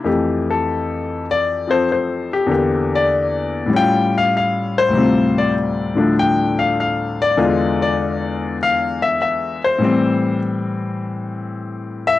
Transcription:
X:1
M:4/4
L:1/8
Q:"Swing" 1/4=98
K:F
V:1 name="Grand piano"
z A3 d c c G- | G d3 g f f c- | c d3 g f f d- | d d3 f e e c- |
c2 z4 z e |]
V:2 name="Grand piano" clef=bass
[F,,E,A,G]4- [F,,E,A,G] [F,CA]3 | [E,,D,B,G]4 [A,,G,^CF]4 | [D,,A,,C,G,CF]3 [A,,D,F,A,D]4- [A,,D,F,A,D] | [E,,D,^G,F]8 |
[A,,E,G,C]8 |]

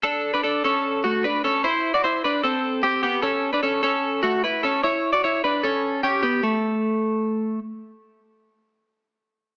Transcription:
X:1
M:4/4
L:1/16
Q:1/4=150
K:Amix
V:1 name="Clean electric guitar"
[DA]3 [DB] [DA]2 [CA]4 [A,F]2 [DB]2 [CA]2 | [E=c]3 [Fd] [Ec]2 [DB]2 [=CA]4 [CG]2 [B,G]2 | [CA]3 [DB] [CA]2 [CA]4 [A,F]2 [EB]2 [CA]2 | [Ec]3 [Fd] [Ec]2 [DB]2 [CA]4 [CG]2 [B,G]2 |
A,12 z4 | z16 |]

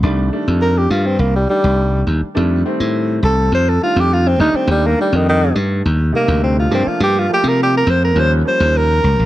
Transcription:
X:1
M:4/4
L:1/16
Q:1/4=103
K:Cdor
V:1 name="Tenor saxophone"
z4 B G F C B, G, G,4 z2 | z6 A2 c A F G F C E C | G, B, G, E, E,2 z4 B,2 C F C F | G F G B G B c B c z c2 B4 |]
V:2 name="Grand piano"
[E,G,A,D]2 [E,G,A,D]6 z2 [E,G,A,D]6 | [E,G,A,D]2 [E,G,A,C]6 z2 [E,G,A,D]4 [E,G,A,D]2- | [E,G,A,D]2 [E,G,A,D]6 z2 [C,G,A,E]4 [F,A,B,D]2- | [F,A,B,D]2 [F,A,B,F]6 [F,G,B,_D]2 [F,G,B,D]6 |]
V:3 name="Slap bass" clef=bass
C,,2 z F,,3 G,,2 C,,2 z C,,3 E,, z | F,,2 z A,,3 C,,2 F,,2 z F,,3 E,, z | E,,2 z F,,3 G,,2 E,,2 z D,,3 G,, z | G,,2 z C,3 F,,2 E,,2 z E,,3 _D,, B,,, |]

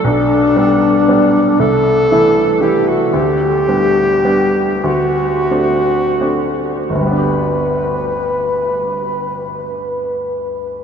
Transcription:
X:1
M:6/8
L:1/16
Q:3/8=33
K:G
V:1 name="Alto saxophone"
D6 A4 G F | G6 F6 | B12 |]
V:2 name="Grand piano"
B,,,2 [G,B,D]2 [G,B,D]2 C,,2 [E,A,E]2 [E,A,E]2 | D,,2 [G,B,D]2 [G,B,D]2 D,,2 [A,CD]2 [A,CD]2 | [G,,,D,,G,B,DG]12 |]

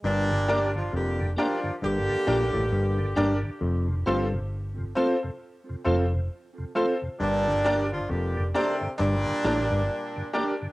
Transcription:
X:1
M:4/4
L:1/16
Q:"Swing 16ths" 1/4=67
K:Gm
V:1 name="Grand piano"
z2 [DGBd] z3 [DGBd] [Bd] z2 [DGBd] z3 [DGBd] z | z2 [CFAc] z3 [CFAc] [Ac] z2 [CFAc] z3 [CFAc] z | z2 [DGBd] z3 [DGBd] [Bd] z2 [DGBd] z3 [DGBd] z |]
V:2 name="Clean electric guitar"
z2 [DGB]2 z2 [DGB]2 z2 [DGB]2 z2 [DGB]2 | z2 [CFA]2 z2 [CFA]2 z2 [CFA]2 z2 [CFA]2 | z2 [DGB]2 z2 [DGB]2 z2 [DGB]2 z2 [DGB]2 |]
V:3 name="Horn section"
[B,,G,D]3 [F,DF] [D,B,G]2 [F,DF]2 [D,B,G]6 z2 | z16 | [B,,G,D]3 [F,DF] [D,B,G]2 [C,A,C]2 [B,,G,D]6 z2 |]
V:4 name="Tonewheel organ"
z2 [B,DG]2 z2 [B,DG]2 z2 [B,DG]2 z2 [B,DG]2 | z2 [A,CF]2 z2 [A,CF]2 z2 [A,CF]2 z2 [A,CF]2 | z2 [B,DG]2 z2 [B,DG]2 z2 [B,DG]2 z2 [B,DG]2 |]
V:5 name="Tonewheel organ" clef=bass
z [G,,D,] z [G,,D,] z [G,,D,] z [G,,D,] z [G,,D,] z [G,,D,] z [G,,D,] z [G,,D,] | z [F,,C,] z [F,,C,] z [F,,C,] z [F,,C,] z [F,,C,] z [F,,C,] z [F,,C,] z [F,,C,] | z [G,,D,] z [G,,D,] z [G,,D,] z [G,,D,] z [G,,D,] z [G,,D,] z [G,,D,] z [G,,D,] |]
V:6 name="Clav" clef=bass
G,,2 z2 F,,2 z2 G,, z B,, A,, G,,2 G,, z | F,,2 G,,2 z6 F,,2 z4 | G,,2 z2 F,,2 z2 G,, z A,, G,, z4 |]
V:7 name="Fingered electric bass" clef=bass
G,,,4 F,,,2 z2 G,,, z B,,, A,,, G,,,2 G,,, z | F,,,2 G,,,4 z4 F,,,2 z4 | G,,,4 F,,,2 z2 G,,, z A,,, G,,, z4 |]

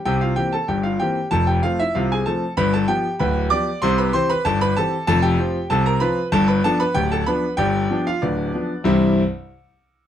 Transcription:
X:1
M:2/4
L:1/16
Q:1/4=95
K:C
V:1 name="Grand piano"
[Gg] [Ff] [Gg] [Aa] [Gg] [Ff] [Gg]2 | [Aa] [Gg] [Ff] [Ee] [Ff] [_A_a] [=A=a]2 | [Bb] [Aa] [Gg]2 [Bgb]2 [dd']2 | [cc'] [Bb] [cc'] [Bb] [Aa] [Bb] [Aa]2 |
[Aa] [Gg]3 [Aa] [_B_b] [=B=b]2 | [Aa] [Bb] [Aa] [Bb] [Gg] [Aa] [Bb]2 | [Gdg]3 [Ff] [DBd]4 | [C,,G,,E,G,CEc]2 z6 |]
V:2 name="Grand piano" clef=bass
[C,,C,]2 [E,_B,C]2 [G,,,G,,]2 [E,B,C]2 | [F,,,F,,]2 [F,A,C]2 [C,,C,]2 [F,A,C]2 | [G,,,G,,]2 [F,B,]2 [D,,,D,,]2 [F,B,G]2 | [C,,C,]2 [E,CG]2 [G,,,G,,]2 [E,CG]2 |
[F,,,F,,]2 [F,CF]2 [C,,C,]2 [F,CF]2 | [G,,,G,,]2 [F,B,D]2 [D,,,D,,]2 [F,B,D]2 | [G,,,G,,]2 [F,B,D]2 [D,,,D,,]2 [F,B,D]2 | z8 |]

